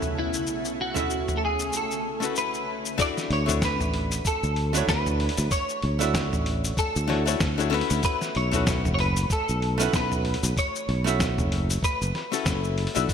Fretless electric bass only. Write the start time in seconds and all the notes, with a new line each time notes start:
Already playing: B1
3.30 D2
3.81 A1
4.43 D2
4.88 D2
5.38 D2
5.83 D2
6.33 A1
6.96 D2
7.41 D2
7.91 D2
8.36 B1
8.86 F#1
9.49 B1
9.94 B1
10.43 B1
10.89 B1
11.38 F#1
12.02 F#1
12.46 F#1
12.97 B1